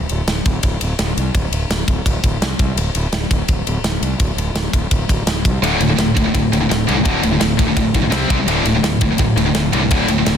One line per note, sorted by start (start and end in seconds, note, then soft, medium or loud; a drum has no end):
0.09 0.22 D1 medium
0.09 ride medium
0.27 0.39 D1 medium
0.27 snare loud
0.27 ride medium
0.45 0.57 D1 medium
0.45 kick medium
0.45 ride medium
0.63 0.75 D1 medium
0.63 kick loud
0.63 ride medium
0.81 0.94 D1 medium
0.81 ride medium
0.99 1.11 D1 medium
0.99 snare loud
0.99 ride medium
1.17 1.29 C2 medium
1.17 ride medium
1.35 1.47 D1 medium
1.35 kick loud
1.35 ride medium
1.51 1.64 D1 medium
1.51 ride medium
1.70 1.82 D1 medium
1.70 snare loud
1.70 ride medium
1.88 2.00 D1 medium
1.88 kick medium
1.88 ride medium
2.06 2.18 D1 medium
2.06 kick loud
2.06 ride medium
2.24 2.36 D1 medium
2.24 kick medium
2.24 ride medium
2.40 2.53 C2 medium
2.40 snare loud
2.40 ride medium
2.59 2.71 C2 medium
2.59 kick medium
2.59 ride medium
2.76 2.88 D1 medium
2.76 ride medium
2.95 3.07 D1 medium
2.95 ride medium
3.12 3.25 D1 medium
3.12 snare loud
3.12 ride medium
3.31 3.43 D1 medium
3.31 kick medium
3.31 ride medium
3.48 3.60 D1 medium
3.48 kick loud
3.48 ride medium
3.67 3.78 D1 medium
3.67 ride medium
3.84 3.96 D1 medium
3.84 snare loud
3.84 ride medium
4.01 4.14 C2 medium
4.01 ride medium
4.20 4.32 D1 medium
4.20 kick loud
4.20 ride medium
4.36 4.49 D1 medium
4.36 ride medium
4.54 4.67 D1 medium
4.54 snare loud
4.54 ride loud
4.73 4.85 D1 medium
4.73 kick medium
4.73 ride medium
4.91 5.03 D1 medium
4.91 kick loud
4.91 ride loud
5.09 5.21 D1 medium
5.09 kick medium
5.09 ride medium
5.26 5.46 D1 medium
5.26 snare loud
5.26 ride medium
5.45 5.57 C2 medium
5.45 kick medium
5.45 ride medium
5.62 5.74 D1 medium
5.62 5.79 D2 medium
5.62 5.80 A2 medium
5.62 5.80 D3 loud
5.62 ride medium
5.80 5.92 D1 medium
5.80 5.89 D2 medium
5.80 5.88 A2 medium
5.80 ride medium
5.90 5.98 D2 medium
5.90 5.98 A2 medium
5.98 6.10 D1 medium
5.98 6.15 D2 medium
5.98 6.15 A2 medium
5.98 snare loud
5.98 ride medium
6.17 6.29 D1 medium
6.17 6.25 D2 medium
6.17 6.25 A2 medium
6.17 kick medium
6.17 ride medium
6.26 6.33 D2 medium
6.26 6.33 A2 medium
6.34 6.46 D1 medium
6.34 6.50 D2 medium
6.34 6.50 A2 medium
6.34 kick loud
6.34 ride medium
6.52 6.64 D1 medium
6.52 6.60 D2 medium
6.52 6.59 A2 medium
6.52 ride medium
6.60 6.69 D2 medium
6.60 6.69 A2 medium
6.70 6.83 D1 medium
6.70 6.86 D2 medium
6.70 6.86 A2 medium
6.70 snare loud
6.70 ride medium
6.87 7.00 C2 medium
6.87 6.95 D2 medium
6.87 6.95 A2 loud
6.87 6.96 D3 medium
6.87 ride medium
6.97 7.03 D2 medium
6.97 7.04 A2 medium
7.04 7.17 D1 medium
7.04 7.22 D2 medium
7.04 7.22 A2 medium
7.04 7.22 D3 loud
7.04 kick loud
7.04 ride medium
7.23 7.36 D1 medium
7.23 7.30 D2 medium
7.23 7.30 A2 medium
7.23 ride medium
7.31 7.38 D2 medium
7.31 7.39 A2 medium
7.39 7.54 D1 medium
7.39 7.56 D2 medium
7.39 7.56 A2 medium
7.39 snare loud
7.39 ride medium
7.57 7.71 D1 medium
7.57 7.66 D2 medium
7.57 7.66 A2 medium
7.57 kick medium
7.57 ride medium
7.67 7.75 D2 medium
7.67 7.76 A2 medium
7.76 7.89 D1 medium
7.76 7.93 D2 medium
7.76 7.93 A2 medium
7.76 kick loud
7.76 ride loud
7.94 8.07 B1 medium
7.94 8.03 D2 medium
7.94 8.02 A2 medium
7.94 kick medium
7.94 ride medium
8.03 8.10 D2 medium
8.03 8.11 A2 medium
8.11 8.24 C2 medium
8.11 8.29 C3 medium
8.11 8.29 G3 medium
8.11 8.29 C4 medium
8.11 snare loud
8.11 ride loud
8.30 8.42 C2 medium
8.30 8.38 C3 medium
8.30 8.38 G3 medium
8.30 8.39 C4 loud
8.30 kick loud
8.30 ride medium
8.39 8.47 C3 medium
8.39 8.48 G3 medium
8.47 8.60 D1 medium
8.47 8.65 D2 medium
8.47 8.65 A2 loud
8.47 8.65 D3 loud
8.47 ride medium
8.65 8.77 D1 medium
8.65 8.75 D2 medium
8.65 8.74 A2 medium
8.65 ride medium
8.75 8.82 D2 medium
8.75 8.82 A2 medium
8.83 8.95 D1 medium
8.83 9.00 D2 medium
8.83 9.00 A2 medium
8.83 snare loud
8.83 ride medium
9.01 9.14 D1 medium
9.01 9.09 D2 medium
9.01 9.09 A2 medium
9.01 kick medium
9.01 ride medium
9.11 9.17 D2 medium
9.11 9.17 A2 medium
9.18 9.32 D1 medium
9.18 9.35 D2 medium
9.18 9.35 A2 medium
9.18 kick loud
9.18 ride medium
9.36 9.49 D1 medium
9.36 9.45 D2 medium
9.36 9.44 A2 medium
9.36 ride medium
9.45 9.54 D2 medium
9.45 9.54 A2 medium
9.55 9.68 D1 medium
9.55 9.72 D2 medium
9.55 9.72 A2 medium
9.55 snare loud
9.55 ride medium
9.73 9.86 C2 medium
9.73 9.81 D2 medium
9.73 9.80 A2 medium
9.73 9.82 D3 loud
9.73 ride medium
9.81 9.90 D2 medium
9.81 9.90 A2 medium
9.91 10.03 D1 medium
9.91 10.08 D2 medium
9.91 10.08 A2 medium
9.91 10.09 D3 loud
9.91 kick loud
9.91 ride medium
10.08 10.21 D1 medium
10.08 10.18 D2 medium
10.08 10.17 A2 medium
10.08 ride medium
10.18 10.26 D2 medium
10.18 10.27 A2 medium
10.26 10.37 D1 medium
10.26 10.37 D2 medium
10.26 10.37 A2 medium
10.26 snare loud
10.26 ride medium